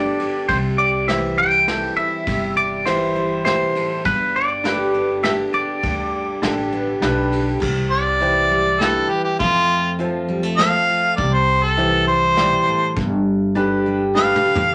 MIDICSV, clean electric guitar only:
0, 0, Header, 1, 2, 480
1, 0, Start_track
1, 0, Key_signature, 0, "major"
1, 0, Tempo, 594059
1, 396, Time_signature, 3, 2, 24, 8
1, 11917, End_track
2, 0, Start_track
2, 0, Title_t, "Clean electric guitar"
2, 0, Program_c, 0, 27
2, 0, Note_on_c, 0, 74, 87
2, 365, Note_off_c, 0, 74, 0
2, 393, Note_on_c, 0, 72, 89
2, 458, Note_off_c, 0, 72, 0
2, 632, Note_on_c, 0, 74, 87
2, 857, Note_off_c, 0, 74, 0
2, 873, Note_on_c, 0, 76, 77
2, 1097, Note_off_c, 0, 76, 0
2, 1116, Note_on_c, 0, 79, 103
2, 1585, Note_off_c, 0, 79, 0
2, 1588, Note_on_c, 0, 76, 91
2, 2072, Note_off_c, 0, 76, 0
2, 2075, Note_on_c, 0, 74, 91
2, 2298, Note_off_c, 0, 74, 0
2, 2307, Note_on_c, 0, 72, 68
2, 2778, Note_off_c, 0, 72, 0
2, 2787, Note_on_c, 0, 72, 84
2, 3273, Note_off_c, 0, 72, 0
2, 3276, Note_on_c, 0, 71, 83
2, 3522, Note_off_c, 0, 71, 0
2, 3523, Note_on_c, 0, 74, 83
2, 4205, Note_off_c, 0, 74, 0
2, 4231, Note_on_c, 0, 76, 85
2, 4296, Note_off_c, 0, 76, 0
2, 4476, Note_on_c, 0, 74, 82
2, 5882, Note_off_c, 0, 74, 0
2, 11917, End_track
0, 0, End_of_file